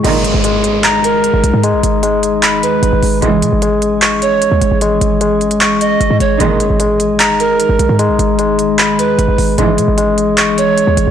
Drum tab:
CC |x---------------|----------------|----------------|----------------|
HH |x-x-x-x-x-x-x-x-|x-x-x-x-x-x-x-o-|x-x-x-x-x-x-x-x-|x-x-x-xxx-x-x-x-|
CP |--------x-------|--------x-------|--------x-------|--------x-------|

CC |----------------|----------------|----------------|
HH |x-x-x-x-x-x-x-x-|x-x-x-x-x-x-x-o-|x-x-x-x-x-x-x-x-|
CP |--------x-------|--------x-------|--------x-------|